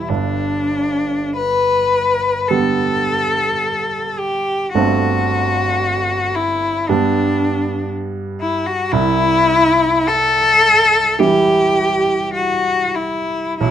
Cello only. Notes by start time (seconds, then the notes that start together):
0.08 D4
1.36 B4
2.48 A4
4.18 G4
4.73 F#4
6.35 E4
6.89 D4
8.41 E4
8.66 F#4
8.92 E4
10.08 A4
11.19 G4
12.33 F#4
12.95 E4
13.59 E4